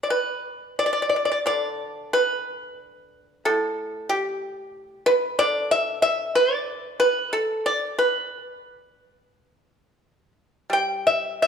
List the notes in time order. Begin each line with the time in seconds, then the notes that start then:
0.03 D5
0.10 B4
0.79 D5
0.86 D5
0.93 D5
1.02 D5
1.09 D5
1.16 D5
1.25 D5
1.32 D5
1.46 D3 D5
2.13 B4
3.45 A2 A4
4.09 G4
5.06 B4
5.39 D3 D5
5.71 E5
6.02 E5
6.35 D5
7.00 B4
7.33 A4
7.66 D5
7.99 B4
10.70 G3 G5
11.07 E5
11.42 E5